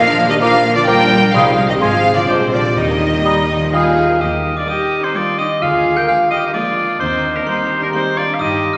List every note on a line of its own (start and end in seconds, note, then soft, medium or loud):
0.00 1.32 A#1 medium
0.00 1.37 A#2 medium
0.00 0.29 F3 loud
0.00 1.17 A#3 medium
0.00 1.17 D4 medium
0.00 0.87 F4 medium
0.00 0.28 A#4 loud
0.00 0.28 F5 loud
0.07 0.18 F3 medium
0.07 0.18 D4 medium
0.07 0.19 D4 medium
0.17 0.29 D3 medium
0.17 1.37 F3 medium
0.17 0.29 A#3 medium
0.17 0.30 F4 medium
0.29 0.41 D#3 medium
0.29 0.41 F3 medium
0.29 0.41 D4 medium
0.29 0.42 D4 medium
0.29 0.34 G4 loud
0.29 0.34 D#5 loud
0.41 0.52 D3 medium
0.41 0.57 F3 medium
0.41 0.76 F3 medium
0.41 0.52 A#3 medium
0.41 1.09 D4 medium
0.41 0.52 F4 medium
0.41 0.78 A#4 loud
0.41 0.75 F5 loud
0.41 0.57 A#5 medium
0.41 0.50 D6 medium
0.53 0.65 F3 medium
0.53 0.64 D4 medium
0.53 0.65 D4 medium
0.65 0.77 D3 medium
0.65 0.76 A#3 medium
0.65 0.77 F4 medium
0.65 1.36 A#4 medium
0.75 0.88 D3 medium
0.75 0.88 F3 medium
0.75 0.88 D4 medium
0.75 0.86 F4 medium
0.75 0.87 D5 loud
0.87 0.99 D3 medium
0.87 1.03 F3 medium
0.87 1.34 G3 loud
0.87 0.99 A#3 medium
0.87 1.36 F4 medium
0.87 0.99 F4 medium
0.87 1.33 A#4 loud
0.87 1.33 G5 loud
0.87 1.03 A#5 medium
0.87 0.97 D6 medium
1.00 1.12 F3 medium
1.00 1.11 D4 medium
1.00 1.12 D4 medium
1.11 1.23 D3 medium
1.11 1.23 A#3 medium
1.11 1.36 D4 medium
1.11 1.23 F4 medium
1.22 1.35 F3 medium
1.22 1.34 D4 medium
1.22 1.35 D4 medium
1.33 1.81 C2 medium
1.33 1.83 C3 medium
1.33 1.68 F3 loud
1.33 1.50 G3 medium
1.33 1.80 G3 medium
1.33 1.45 G3 medium
1.33 1.80 D#4 medium
1.33 1.45 D#4 medium
1.33 1.69 G#4 medium
1.33 1.69 F5 loud
1.33 1.51 C6 medium
1.33 1.43 D#6 medium
1.46 1.57 D#3 medium
1.46 1.58 C4 medium
1.57 1.69 G3 medium
1.57 2.03 C4 medium
1.57 1.69 D#4 medium
1.57 1.83 D#4 medium
1.68 1.81 D#3 medium
1.68 1.81 C4 medium
1.68 1.75 G4 loud
1.68 1.74 D#5 loud
1.80 2.29 G#1 medium
1.80 2.31 G#2 medium
1.80 2.15 F3 medium
1.80 2.28 G#3 medium
1.80 1.96 G#3 medium
1.80 1.92 G#3 medium
1.80 2.28 C4 medium
1.80 1.92 F4 medium
1.80 2.16 G#4 medium
1.80 2.16 F5 loud
1.80 1.97 G#5 medium
1.80 1.89 C6 medium
1.91 2.04 F3 medium
1.91 2.04 C4 medium
2.04 2.16 G#3 medium
2.04 2.79 C4 medium
2.04 2.16 F4 medium
2.04 2.79 F4 medium
2.15 2.21 D3 medium
2.15 2.26 F3 medium
2.15 2.28 C4 medium
2.15 2.27 F4 medium
2.15 2.29 D5 loud
2.27 2.76 A#1 medium
2.27 2.79 A#2 medium
2.27 2.36 C3 medium
2.27 2.39 F3 medium
2.27 2.39 G3 medium
2.27 3.73 G3 medium
2.27 2.45 G#3 medium
2.27 2.39 D4 medium
2.27 2.76 D4 medium
2.27 2.39 F4 medium
2.27 2.53 C5 medium
2.27 2.44 G5 medium
2.27 2.38 D6 medium
2.40 2.53 D3 medium
2.40 2.53 G#3 medium
2.40 2.52 C4 medium
2.52 2.60 D3 medium
2.52 2.64 F3 medium
2.52 2.64 G3 medium
2.52 2.64 D4 medium
2.52 2.79 D4 soft
2.52 2.64 F4 medium
2.52 3.73 G4 medium
2.52 2.77 D5 medium
2.63 2.76 D3 medium
2.63 2.76 G#3 medium
2.63 2.76 C4 medium
2.76 3.99 D#2 medium
2.76 3.95 D#3 medium
2.76 4.21 D#3 medium
2.76 2.88 G3 medium
2.76 2.88 D#4 medium
2.76 3.71 D#4 medium
2.76 3.96 G4 medium
2.76 3.73 D#5 loud
2.88 3.00 D#3 medium
2.88 3.00 A#3 medium
2.88 3.01 A#3 medium
3.00 3.13 G3 medium
3.00 4.45 G3 soft
3.00 3.13 D#4 medium
3.12 3.25 D#3 medium
3.12 3.25 A#3 medium
3.23 3.58 G3 medium
3.23 3.41 G3 medium
3.23 3.35 D#4 medium
3.23 3.97 A#4 medium
3.23 3.42 A#5 medium
3.23 3.34 D#6 medium
3.36 3.49 A#3 medium
3.49 3.61 D#4 medium
3.49 5.64 D#5 medium
3.60 3.66 F3 medium
3.60 3.73 A#3 medium
3.73 4.08 G3 medium
3.73 3.89 G3 soft
3.73 3.84 D#4 medium
3.73 4.18 F4 medium
3.73 4.68 G4 medium
3.73 4.18 G#4 medium
3.73 4.22 F5 medium
3.73 3.83 D#6 medium
3.73 4.18 F6 medium
3.84 3.97 A#3 medium
3.94 4.08 D#4 medium
3.94 4.91 A#4 medium
4.08 4.14 D#3 medium
4.08 4.20 A#3 medium
4.20 4.59 D#2 medium
4.20 5.64 D#3 medium
4.20 4.56 D#4 medium
4.20 4.57 G4 medium
4.20 4.56 D#5 medium
4.20 4.54 D#6 medium
4.46 5.14 G3 soft
4.56 4.68 D4 medium
4.56 4.61 F4 medium
4.56 4.68 D5 medium
4.56 4.68 D6 medium
4.67 5.03 G3 medium
4.67 5.02 A#3 medium
4.67 5.03 D#4 medium
4.67 5.02 G4 medium
4.67 5.65 G4 medium
4.67 5.05 D#5 medium
4.67 5.01 D#6 medium
4.92 6.31 A#4 soft
5.02 5.15 C4 medium
5.02 5.15 D#4 medium
5.02 5.17 C5 medium
5.02 5.15 C6 medium
5.14 5.50 G3 medium
5.14 5.64 G3 medium
5.14 5.50 A#3 medium
5.14 5.38 D4 medium
5.14 5.39 F4 medium
5.14 5.39 D5 medium
5.14 5.38 D6 medium
5.37 5.64 D#4 soft
5.37 5.50 D#4 medium
5.37 5.47 G4 medium
5.37 5.63 D#5 medium
5.37 5.61 D#6 medium
5.61 5.99 D2 medium
5.61 7.03 D3 medium
5.61 5.96 F4 medium
5.61 5.96 G#4 medium
5.61 5.98 F5 medium
5.61 5.95 F6 medium
5.86 6.54 G#3 soft
5.96 6.01 G4 medium
5.96 6.08 A#4 medium
5.96 6.07 G5 medium
5.96 6.07 G6 medium
6.07 6.43 F3 medium
6.07 6.43 G#3 medium
6.07 6.43 A#3 medium
6.07 6.31 F4 medium
6.07 7.03 F4 soft
6.07 6.16 G#4 medium
6.07 6.30 F5 medium
6.07 6.30 F6 medium
6.30 6.55 D#4 medium
6.30 6.54 G4 medium
6.30 7.47 A#4 medium
6.30 6.38 D#5 medium
6.30 6.53 D#6 medium
6.46 6.55 D#5 medium
6.53 6.89 F3 medium
6.53 7.03 G#3 medium
6.53 6.89 G#3 medium
6.53 6.90 A#3 medium
6.53 7.00 D4 medium
6.53 7.00 F4 medium
6.53 6.99 D5 medium
6.53 6.98 D6 medium
6.78 7.03 D4 soft
7.00 7.38 D#2 medium
7.00 8.43 D#3 medium
7.00 7.36 C4 medium
7.00 7.35 D#4 medium
7.00 7.37 C5 medium
7.00 7.33 C6 medium
7.26 7.94 D#4 soft
7.36 7.41 A#3 medium
7.36 7.47 D4 medium
7.36 7.47 A#4 medium
7.36 7.47 A#5 medium
7.47 7.82 D#3 medium
7.47 7.83 G3 medium
7.47 7.83 A#3 medium
7.47 7.82 C4 medium
7.47 7.82 D#4 medium
7.47 8.77 A#4 soft
7.47 7.81 C5 medium
7.47 7.79 C6 medium
7.71 8.77 G4 medium
7.81 7.94 A#3 medium
7.81 7.86 D4 medium
7.81 7.88 A#4 medium
7.81 7.93 A#5 medium
7.93 8.28 D#3 medium
7.93 8.28 G3 medium
7.93 8.29 A#3 medium
7.93 8.18 C4 medium
7.93 8.02 D#4 medium
7.93 8.77 D#4 soft
7.93 8.19 C5 medium
7.93 8.15 C6 medium
8.16 8.63 G3 soft
8.16 8.40 D4 medium
8.16 8.24 F4 medium
8.16 8.35 D5 medium
8.16 8.39 D6 medium
8.33 8.42 F5 medium
8.39 8.77 G1 medium
8.39 8.77 G2 medium
8.39 8.75 D#4 medium
8.39 8.74 G4 medium
8.39 8.75 D#5 medium
8.39 8.72 D#6 medium
8.64 8.77 G3 soft
8.73 8.77 F4 medium
8.73 8.77 F6 medium